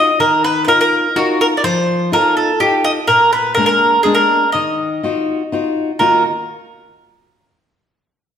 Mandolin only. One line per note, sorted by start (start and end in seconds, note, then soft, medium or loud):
0.00 0.18 D#5 loud
0.20 0.43 A#4 medium
0.44 0.63 B4 medium
0.65 0.80 A#4 loud
0.65 0.67 B4 medium
0.81 1.17 A#4 medium
1.16 1.42 F#4 medium
1.41 1.46 A#4 loud
1.57 1.64 D5 medium
1.64 2.09 C5 loud
2.13 2.36 A#4 loud
2.37 2.58 A4 medium
2.60 2.84 G4 medium
2.84 2.91 D#5 loud
3.07 3.31 A#4 loud
3.33 3.54 B4 medium
3.55 3.65 A#4 loud
3.66 4.00 A#4 medium
4.03 4.15 G#4 medium
4.15 4.49 A#4 medium
4.52 5.71 D#5 medium
5.99 6.23 A#4 medium